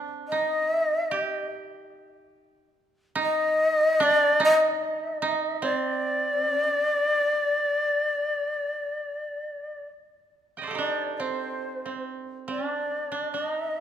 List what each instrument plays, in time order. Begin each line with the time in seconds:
Already playing: koto C4 D4
0.28 koto D#4, shakuhachi D#5
0.71 shakuhachi E5
0.82 shakuhachi D#5
0.95 shakuhachi E5
1.07 koto G4, shakuhachi D#5
3.15 koto D#4
3.23 shakuhachi D#5
4.00 koto D4, shakuhachi D5
4.40 koto D#4
4.45 shakuhachi D#5
5.22 koto D#4
5.62 koto C4, shakuhachi D5
6.38 koto C#4
6.87 koto D4
10.57 koto D#5 G5
10.62 koto C5 D5
10.67 koto G4 A4
10.75 koto D4 D#4, shakuhachi D5
11.16 koto C4, shakuhachi D5
11.20 shakuhachi C5
11.86 koto C4
12.48 koto C4, shakuhachi D5
12.66 koto D4
13.12 koto D4
13.32 koto D4, shakuhachi D#5
13.48 koto D#4